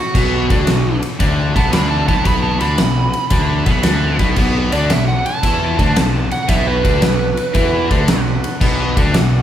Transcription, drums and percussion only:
0.15 kick, crash
0.50 kick, ride
0.67 snare, ride
1.03 ride
1.20 kick, ride
1.56 kick, snare, ride
1.73 snare, ride
2.08 kick, ride
2.25 kick, ride
2.61 ride
2.78 snare, ride
3.13 ride
3.30 kick, ride
3.66 kick, ride
3.83 snare, ride
4.19 kick, ride
4.36 kick, crash
4.72 ride
4.90 snare, ride
5.26 ride
5.43 kick, ride
5.79 kick, ride
5.96 snare, ride
6.31 ride
6.49 kick, ride
6.85 kick, ride
7.02 snare, ride
7.37 ride
7.55 kick, ride
7.91 kick, ride
8.08 snare, ride
8.44 ride
8.61 kick, crash
8.97 kick, ride
9.14 snare, ride

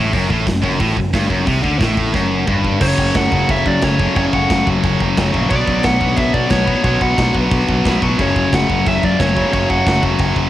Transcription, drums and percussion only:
0.13 kick, open hi-hat
0.30 kick
0.47 kick, snare, open hi-hat
0.64 kick
0.80 kick, open hi-hat
0.97 kick
1.14 kick, snare, open hi-hat
1.30 kick
1.47 kick, open hi-hat
1.64 kick
1.81 kick, snare, open hi-hat
1.97 kick
2.14 kick, snare
2.47 kick, mid tom
2.65 kick
2.81 kick, crash
2.98 kick
3.14 kick, snare, crash
3.32 kick
3.49 kick, crash
3.66 kick
3.82 kick, snare, crash
4.00 kick
4.16 kick, crash
4.33 kick
4.50 kick, snare, crash
4.67 kick
4.84 kick, crash
5.00 kick
5.17 kick, snare, crash
5.34 kick
5.50 kick, crash
5.68 kick
5.83 kick, snare, crash
6.01 kick
6.17 kick, crash
6.34 kick
6.50 kick, snare, crash
6.68 kick
6.84 kick, crash
7.01 kick
7.18 kick, snare, crash
7.35 kick
7.51 kick, crash
7.69 kick
7.85 kick, snare, crash
8.02 kick
8.19 kick, crash
8.36 kick
8.53 kick, snare, crash
8.70 kick
8.87 kick, crash
9.03 kick
9.20 kick, snare, crash
9.37 kick
9.53 kick, crash
9.70 kick
9.87 kick, snare, crash
10.03 kick
10.19 kick, crash
10.36 kick

